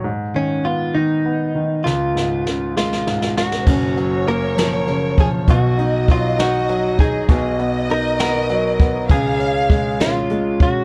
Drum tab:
CC |------------|------------|x-----------|------------|
HH |------------|------------|--x-x-x-x-x-|x-x-x-x-x-x-|
SD |------------|o-o-o-oooooo|------o-----|------o-----|
BD |------------|------------|o---------o-|o---o-----o-|

CC |------------|------------|
HH |x-x-x-x-x-x-|x-x-x-x-x-x-|
SD |------o-----|------o-----|
BD |o---------o-|o---o-----o-|